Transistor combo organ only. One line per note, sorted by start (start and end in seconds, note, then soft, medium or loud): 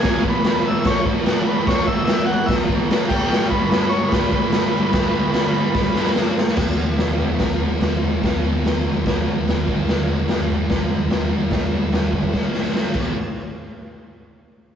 0.00 0.23 G#4 loud
0.30 0.47 B4 loud
0.48 0.66 B4 loud
0.67 0.88 E5 loud
0.86 1.05 C#5 loud
1.47 1.68 B4 medium
1.67 1.88 C#5 loud
1.87 2.04 E5 loud
2.05 2.26 E5 loud
2.26 2.48 F#5 loud
2.46 2.56 E5 loud
3.08 3.47 G4 loud
3.50 3.70 B4 loud
3.71 3.92 B4 loud
3.89 4.12 C#5 loud
4.08 6.11 B4 medium